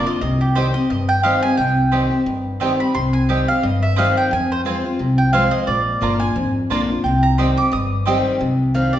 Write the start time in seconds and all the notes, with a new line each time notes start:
Already playing: F2
0.05 D4 F4 D#5
0.21 C2 C3 D#5
0.41 G4
0.55 D#3 G3 C4 G4 C5 D#5 G5
0.74 C4 G4 D#5
0.90 G1 G2 D#5
1.09 G5
1.23 D#3 G3 C4 G4 D#5 F5 G5
1.43 C4 G4 G#5
1.57 C2 C3 G5
1.92 D#3 G3 C4 G4 D#5 G5
2.11 C4 G4
2.26 G1 G2
2.60 D#3 G3 C4 G4 D#5 G5
2.80 C4 G4 B5
2.94 C2 C3 C6
3.13 G#5
3.29 D#3 G3 C4 G4 D#5 G5
3.48 C4 G4 F5
3.63 G1 G2 D#5
3.83 E5
3.96 D#3 G3 C4 G4 D#5 F5 G5
4.17 G5
4.31 F2 G#5
4.52 C5
4.65 F3 G#3 C4 F4 C5 G#5
4.84 C4 F4
4.99 C2 C3
5.18 G5
5.33 F3 G#3 C4 F4 C5 F5 G#5
5.51 D#5
5.67 A#1 A#2 D5
6.01 G1 D3 A#3 D4 F4 D5 A#5
6.20 D4 F4 G#5
6.36 G#1 F2
6.70 A#1 D3 A#3 D4 F4 D5 A#5
6.90 D4 F4
7.04 C2 C3 G5
7.23 A#5
7.38 D#3 G3 C4 G4 D#5 G5 C6
7.57 C4 G4 D6
7.72 G1 G2 D#6
8.06 D#3 G3 C4 G4 D#5 G5
8.41 C2 C3
8.74 D#3 G3 C4 G4 F5
8.93 C4 G4 D5